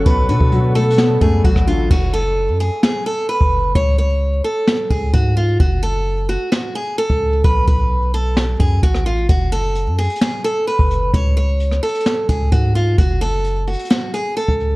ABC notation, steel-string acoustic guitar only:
X:1
M:4/4
L:1/8
Q:1/4=130
K:F#m
V:1 name="Steel-string acoustic guitar"
B B2 A2 G F ^E | F A2 G G A B2 | c c2 A2 G F ^E | F A2 F F G A2 |
B B2 A2 G F ^E | F A2 G G A B2 | c c2 A2 G F ^E | F A2 F F G A2 |]